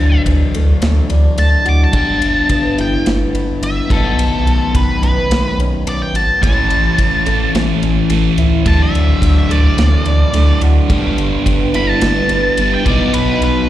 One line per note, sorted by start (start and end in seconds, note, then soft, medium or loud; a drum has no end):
0.00 0.17 D2 medium
0.00 1.11 D3 medium
0.00 1.91 D3 medium
0.00 1.92 F#3 medium
0.00 1.93 A3 medium
0.00 1.93 D4 loud
0.00 0.22 A5 loud
0.25 0.44 D2 medium
0.25 0.82 E3 medium
0.25 kick medium
0.25 ride medium
0.54 0.73 D2 medium
0.54 1.36 A3 medium
0.54 ride medium
0.82 1.01 D2 loud
0.82 1.93 E3 medium
0.82 snare loud
0.82 ride medium
1.10 1.29 D2 medium
1.10 1.94 D4 medium
1.10 ride medium
1.37 1.56 D2 medium
1.37 1.93 A3 medium
1.37 1.65 A5 loud
1.37 ride medium
1.65 1.86 D2 medium
1.65 1.93 F#4 medium
1.65 1.81 D6 medium
1.65 ride medium
1.84 2.77 A5 medium
1.91 2.12 G1 medium
1.91 3.87 G2 loud
1.91 3.87 D3 medium
1.91 3.88 G3 medium
1.91 3.34 G3 medium
1.91 3.88 B3 loud
1.91 kick loud
1.91 ride medium
1.96 3.89 D4 loud
2.22 2.42 G1 medium
2.22 ride medium
2.49 2.69 G1 medium
2.49 3.04 B3 medium
2.49 kick medium
2.49 ride medium
2.78 2.97 G1 medium
2.78 3.61 E4 medium
2.78 3.06 G5 medium
2.78 ride medium
3.06 3.25 G1 loud
3.06 3.90 B3 medium
3.06 snare loud
3.06 ride medium
3.33 3.52 G1 medium
3.33 3.90 B4 medium
3.33 ride medium
3.61 3.80 G1 loud
3.61 3.90 E4 medium
3.61 3.90 E5 medium
3.61 ride medium
3.88 4.09 B1 medium
3.88 6.11 B2 medium
3.88 4.17 B2 medium
3.88 6.12 D#3 medium
3.88 6.13 F#3 medium
3.88 6.13 B3 medium
3.88 kick loud
3.88 snare soft
3.88 ride medium
3.92 6.14 D#4 medium
3.92 4.72 A4 medium
4.16 4.36 B1 medium
4.16 5.58 B2 medium
4.16 ride medium
4.45 4.64 B1 medium
4.45 ride medium
4.74 4.93 B1 medium
4.74 5.30 D#3 medium
4.74 5.02 B4 medium
4.74 kick medium
4.74 ride medium
5.01 5.20 B1 medium
5.01 5.85 B3 medium
5.01 5.57 B4 medium
5.01 ride medium
5.29 5.48 B1 loud
5.29 6.43 D#3 medium
5.29 snare loud
5.29 ride medium
5.58 5.76 B1 loud
5.58 6.43 C#4 medium
5.58 ride medium
5.85 6.04 B1 medium
5.85 6.42 B3 medium
5.85 6.01 D5 medium
5.85 ride medium
6.02 6.16 G5 loud
6.12 6.32 G#1 medium
6.12 6.42 F#4 medium
6.12 6.42 A5 medium
6.12 ride medium
6.41 6.61 A1 medium
6.41 7.24 A2 medium
6.41 7.82 A2 medium
6.41 7.28 E3 medium
6.41 7.27 A3 medium
6.41 7.25 C#4 loud
6.41 7.25 E4 medium
6.41 7.51 A5 loud
6.41 kick loud
6.41 ride loud
6.70 6.89 A1 medium
6.70 ride medium
6.98 7.17 A1 loud
6.98 7.54 E3 medium
6.98 kick medium
6.98 ride loud
7.26 7.45 A1 medium
7.26 8.08 A2 medium
7.26 8.09 E3 medium
7.26 8.09 A3 medium
7.26 8.09 C#4 medium
7.26 8.11 E4 medium
7.26 ride medium
7.54 7.73 A1 medium
7.54 8.69 E3 medium
7.54 snare loud
7.54 ride medium
7.82 8.01 A1 medium
7.82 8.66 C#4 medium
7.82 ride medium
8.09 8.29 A1 medium
8.09 8.64 A2 medium
8.09 8.65 E3 medium
8.09 8.66 A3 medium
8.09 8.65 A3 medium
8.09 8.65 C#4 medium
8.09 8.68 E4 medium
8.09 ride medium
8.37 8.56 C#2 medium
8.37 8.69 E4 medium
8.37 ride medium
8.65 8.85 D2 loud
8.65 9.48 D3 medium
8.65 10.06 D3 medium
8.65 9.49 F#3 medium
8.65 9.49 A3 medium
8.65 9.48 D4 loud
8.65 8.80 A5 medium
8.65 kick loud
8.65 ride medium
8.82 9.36 E5 medium
8.94 9.13 D2 medium
8.94 ride medium
9.22 9.41 D2 loud
9.22 9.77 E3 medium
9.22 kick medium
9.22 ride medium
9.38 9.51 E5 medium
9.49 9.68 D2 medium
9.49 10.32 D3 medium
9.49 10.33 F#3 medium
9.49 10.33 A3 medium
9.49 10.32 D4 medium
9.49 10.60 D5 loud
9.49 ride medium
9.77 9.96 D2 loud
9.77 10.90 E3 medium
9.77 snare loud
9.77 ride medium
10.05 10.24 D2 medium
10.05 10.91 D4 medium
10.05 ride medium
10.33 10.52 D2 medium
10.33 10.88 D3 medium
10.33 10.89 F#3 medium
10.33 10.90 A3 medium
10.33 10.89 A3 medium
10.33 10.90 D4 medium
10.33 ride medium
10.61 10.80 D2 loud
10.61 10.91 F#4 medium
10.61 ride medium
10.90 11.09 G1 medium
10.90 11.72 G2 medium
10.90 11.73 D3 medium
10.90 12.30 G3 medium
10.90 11.73 G3 medium
10.90 11.75 B3 loud
10.90 11.73 D4 loud
10.90 kick loud
10.90 ride loud
11.18 11.37 G1 medium
11.18 ride medium
11.46 11.65 G1 medium
11.46 12.02 B3 medium
11.46 kick medium
11.46 ride loud
11.74 11.93 G1 medium
11.74 12.57 G2 medium
11.74 12.57 D3 medium
11.74 12.57 G3 medium
11.74 12.60 B3 medium
11.74 12.56 D4 medium
11.74 12.57 E4 medium
11.74 11.90 B5 loud
11.74 ride medium
11.90 12.70 A5 loud
12.01 12.21 G1 loud
12.01 13.69 B3 medium
12.01 snare loud
12.01 ride loud
12.29 12.49 G1 medium
12.29 13.69 B4 medium
12.29 ride medium
12.57 12.77 G1 loud
12.57 12.84 G2 medium
12.57 12.85 D3 medium
12.57 12.85 G3 medium
12.57 12.87 B3 medium
12.57 12.86 D4 medium
12.57 12.86 E4 medium
12.57 ride loud
12.74 12.87 G5 medium
12.85 13.05 B1 loud
12.85 13.68 B2 medium
12.85 13.12 B2 medium
12.85 13.69 F#3 loud
12.85 13.69 B3 medium
12.85 13.69 D#4 loud
12.85 13.13 D5 medium
12.85 kick loud
12.85 ride medium
13.13 13.32 B1 medium
13.13 13.69 B2 medium
13.13 13.41 B4 loud
13.13 ride loud
13.41 13.60 B1 medium
13.41 13.69 B4 loud
13.41 ride medium